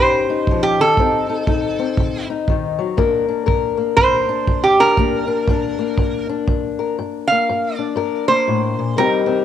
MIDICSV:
0, 0, Header, 1, 4, 480
1, 0, Start_track
1, 0, Key_signature, -2, "minor"
1, 0, Tempo, 500417
1, 930, Time_signature, 4, 2, 24, 8
1, 9062, End_track
2, 0, Start_track
2, 0, Title_t, "Resonator guitar played with a steel bar"
2, 0, Program_c, 0, 25
2, 0, Note_on_c, 0, 72, 82
2, 585, Note_off_c, 0, 72, 0
2, 602, Note_on_c, 0, 67, 75
2, 761, Note_off_c, 0, 67, 0
2, 777, Note_on_c, 0, 69, 74
2, 2178, Note_off_c, 0, 69, 0
2, 3803, Note_on_c, 0, 72, 92
2, 4429, Note_off_c, 0, 72, 0
2, 4446, Note_on_c, 0, 67, 72
2, 4604, Note_on_c, 0, 70, 80
2, 4605, Note_off_c, 0, 67, 0
2, 6010, Note_off_c, 0, 70, 0
2, 6979, Note_on_c, 0, 77, 75
2, 7430, Note_off_c, 0, 77, 0
2, 7430, Note_on_c, 0, 74, 71
2, 7910, Note_off_c, 0, 74, 0
2, 7943, Note_on_c, 0, 72, 72
2, 8592, Note_off_c, 0, 72, 0
2, 8614, Note_on_c, 0, 70, 67
2, 9062, Note_off_c, 0, 70, 0
2, 9062, End_track
3, 0, Start_track
3, 0, Title_t, "Steel-string acoustic guitar"
3, 0, Program_c, 1, 25
3, 0, Note_on_c, 1, 51, 75
3, 0, Note_on_c, 1, 61, 52
3, 0, Note_on_c, 1, 63, 58
3, 0, Note_on_c, 1, 67, 64
3, 250, Note_off_c, 1, 63, 0
3, 285, Note_on_c, 1, 63, 55
3, 414, Note_off_c, 1, 51, 0
3, 488, Note_on_c, 1, 53, 68
3, 758, Note_off_c, 1, 53, 0
3, 761, Note_on_c, 1, 51, 57
3, 905, Note_off_c, 1, 61, 0
3, 921, Note_off_c, 1, 63, 0
3, 941, Note_off_c, 1, 51, 0
3, 944, Note_off_c, 1, 67, 0
3, 947, Note_on_c, 1, 50, 66
3, 951, Note_on_c, 1, 60, 58
3, 957, Note_on_c, 1, 63, 55
3, 1231, Note_off_c, 1, 63, 0
3, 1241, Note_on_c, 1, 63, 55
3, 1382, Note_off_c, 1, 50, 0
3, 1409, Note_off_c, 1, 63, 0
3, 1411, Note_on_c, 1, 50, 75
3, 1421, Note_on_c, 1, 63, 61
3, 1704, Note_off_c, 1, 60, 0
3, 1716, Note_on_c, 1, 60, 54
3, 1854, Note_off_c, 1, 50, 0
3, 1920, Note_on_c, 1, 50, 80
3, 2186, Note_off_c, 1, 63, 0
3, 2205, Note_on_c, 1, 63, 58
3, 2349, Note_off_c, 1, 50, 0
3, 2393, Note_on_c, 1, 51, 69
3, 2673, Note_off_c, 1, 51, 0
3, 2673, Note_on_c, 1, 54, 59
3, 2838, Note_off_c, 1, 60, 0
3, 2842, Note_off_c, 1, 63, 0
3, 2851, Note_on_c, 1, 43, 74
3, 2854, Note_on_c, 1, 58, 59
3, 2858, Note_on_c, 1, 62, 63
3, 2859, Note_off_c, 1, 54, 0
3, 2865, Note_on_c, 1, 70, 73
3, 3148, Note_off_c, 1, 62, 0
3, 3152, Note_on_c, 1, 62, 50
3, 3295, Note_off_c, 1, 43, 0
3, 3318, Note_on_c, 1, 43, 74
3, 3319, Note_off_c, 1, 70, 0
3, 3322, Note_on_c, 1, 70, 69
3, 3616, Note_off_c, 1, 58, 0
3, 3619, Note_on_c, 1, 58, 51
3, 3768, Note_off_c, 1, 43, 0
3, 3806, Note_on_c, 1, 43, 81
3, 4108, Note_off_c, 1, 62, 0
3, 4112, Note_on_c, 1, 62, 57
3, 4252, Note_off_c, 1, 43, 0
3, 4294, Note_on_c, 1, 43, 77
3, 4603, Note_off_c, 1, 62, 0
3, 4606, Note_on_c, 1, 62, 50
3, 4736, Note_off_c, 1, 43, 0
3, 4776, Note_on_c, 1, 43, 74
3, 4780, Note_off_c, 1, 58, 0
3, 4780, Note_off_c, 1, 62, 0
3, 4784, Note_on_c, 1, 58, 56
3, 4784, Note_on_c, 1, 62, 64
3, 5049, Note_off_c, 1, 62, 0
3, 5060, Note_on_c, 1, 62, 52
3, 5217, Note_off_c, 1, 43, 0
3, 5252, Note_off_c, 1, 62, 0
3, 5263, Note_on_c, 1, 43, 81
3, 5275, Note_on_c, 1, 62, 65
3, 5540, Note_off_c, 1, 58, 0
3, 5551, Note_on_c, 1, 58, 49
3, 5700, Note_off_c, 1, 43, 0
3, 5741, Note_on_c, 1, 43, 76
3, 6026, Note_off_c, 1, 62, 0
3, 6037, Note_on_c, 1, 62, 59
3, 6179, Note_off_c, 1, 43, 0
3, 6217, Note_on_c, 1, 43, 70
3, 6510, Note_off_c, 1, 70, 0
3, 6513, Note_on_c, 1, 70, 55
3, 6656, Note_off_c, 1, 43, 0
3, 6675, Note_off_c, 1, 70, 0
3, 6701, Note_on_c, 1, 43, 72
3, 7004, Note_off_c, 1, 58, 0
3, 7015, Note_on_c, 1, 58, 53
3, 7138, Note_off_c, 1, 43, 0
3, 7188, Note_on_c, 1, 43, 77
3, 7458, Note_off_c, 1, 62, 0
3, 7469, Note_on_c, 1, 62, 50
3, 7622, Note_off_c, 1, 43, 0
3, 7633, Note_on_c, 1, 43, 83
3, 7643, Note_on_c, 1, 70, 74
3, 7931, Note_off_c, 1, 58, 0
3, 7942, Note_on_c, 1, 58, 63
3, 8083, Note_off_c, 1, 43, 0
3, 8129, Note_on_c, 1, 45, 66
3, 8419, Note_off_c, 1, 45, 0
3, 8430, Note_on_c, 1, 46, 58
3, 8583, Note_off_c, 1, 70, 0
3, 8602, Note_on_c, 1, 48, 71
3, 8609, Note_on_c, 1, 55, 57
3, 8611, Note_off_c, 1, 58, 0
3, 8614, Note_off_c, 1, 62, 0
3, 8616, Note_off_c, 1, 46, 0
3, 8617, Note_on_c, 1, 60, 64
3, 8624, Note_on_c, 1, 63, 58
3, 8629, Note_on_c, 1, 67, 73
3, 8872, Note_off_c, 1, 60, 0
3, 8884, Note_on_c, 1, 60, 55
3, 9048, Note_off_c, 1, 48, 0
3, 9062, Note_off_c, 1, 55, 0
3, 9062, Note_off_c, 1, 60, 0
3, 9062, Note_off_c, 1, 63, 0
3, 9062, Note_off_c, 1, 67, 0
3, 9062, End_track
4, 0, Start_track
4, 0, Title_t, "Drums"
4, 453, Note_on_c, 9, 36, 63
4, 549, Note_off_c, 9, 36, 0
4, 933, Note_on_c, 9, 36, 58
4, 1029, Note_off_c, 9, 36, 0
4, 1412, Note_on_c, 9, 36, 68
4, 1508, Note_off_c, 9, 36, 0
4, 1893, Note_on_c, 9, 36, 68
4, 1989, Note_off_c, 9, 36, 0
4, 2376, Note_on_c, 9, 36, 63
4, 2472, Note_off_c, 9, 36, 0
4, 2859, Note_on_c, 9, 36, 60
4, 2955, Note_off_c, 9, 36, 0
4, 3338, Note_on_c, 9, 36, 61
4, 3433, Note_off_c, 9, 36, 0
4, 3813, Note_on_c, 9, 36, 76
4, 3909, Note_off_c, 9, 36, 0
4, 4292, Note_on_c, 9, 36, 64
4, 4388, Note_off_c, 9, 36, 0
4, 4771, Note_on_c, 9, 36, 63
4, 4867, Note_off_c, 9, 36, 0
4, 5252, Note_on_c, 9, 36, 65
4, 5348, Note_off_c, 9, 36, 0
4, 5732, Note_on_c, 9, 36, 64
4, 5828, Note_off_c, 9, 36, 0
4, 6213, Note_on_c, 9, 36, 62
4, 6308, Note_off_c, 9, 36, 0
4, 9062, End_track
0, 0, End_of_file